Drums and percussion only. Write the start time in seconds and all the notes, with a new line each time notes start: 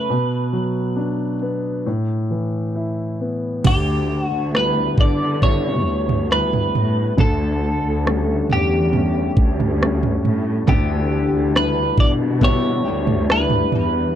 3.64 kick, floor tom, crash
4.55 cross-stick
4.98 kick, floor tom
5.42 kick, floor tom
6.09 floor tom
6.32 cross-stick
6.53 floor tom
6.75 floor tom
7.18 kick, floor tom
8.07 cross-stick
8.50 floor tom
8.93 floor tom
9.37 kick
9.60 floor tom
9.83 cross-stick
10.03 floor tom
10.25 floor tom
10.68 kick, floor tom
11.56 cross-stick
11.98 kick, floor tom
12.41 kick, floor tom
13.07 floor tom
13.30 cross-stick
13.50 floor tom
13.72 floor tom